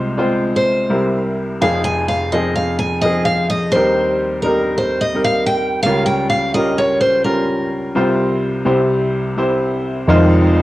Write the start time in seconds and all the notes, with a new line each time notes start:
Already playing: C2 C3 G#3 C4 F4 C5
0.17 G#3 C4 F4 C5
0.56 C5
0.89 C2 C3 G3 C4 E4 A#4
1.61 F1 F2 F3 C4 D#4 G#4 F5
1.84 G#5
2.08 F5
2.32 F3 C4 D#4 G#4 D#5
2.56 F5
2.79 G#5
3.02 F3 C4 D#4 G#4 D#5
3.25 F5
3.50 D#5
3.72 D#2 D#3 G3 C4 D#4 A#4 C5
4.42 G3 C4 D#4 A#4
4.78 C5
5.01 D#5
5.14 G3 C4 D#4 A#4
5.24 F5
5.46 G5
5.83 C#2 C#3 G3 C#4 F4 A#4 F5
6.06 G5
6.29 F5
6.54 G3 C#4 F4 A#4 D#5
6.78 C#5
7.01 C5
7.24 G3 C#4 F4 A#4
7.95 C2 C3 G3 C4 F4 C5
8.65 C2 C3 G3 C4 E4 C5
9.37 G3 C4 E4 C5
10.07 F1 F2 D#3 G#3 C4 D#4 F4 C5